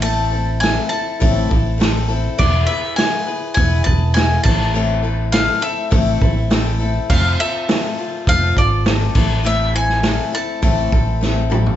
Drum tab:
CC |----------------|x-------------x-|----------------|x-------------x-|
HH |o---o---o---o---|----o---o---o---|----o---o---o---|----o---o---o---|
SD |----o-------o---|----o-------o--o|----o-------o---|----o-------o---|
T2 |----------------|----------------|----------------|----------------|
FT |----------------|----------------|----------------|----------------|
BD |--------o-o-----|o-------o-o---o-|--------o-o-----|o-------o-o---o-|

CC |----------------|
HH |----o---o-------|
SD |---oo-------o---|
T2 |--------------o-|
FT |---------------o|
BD |--------o-o-----|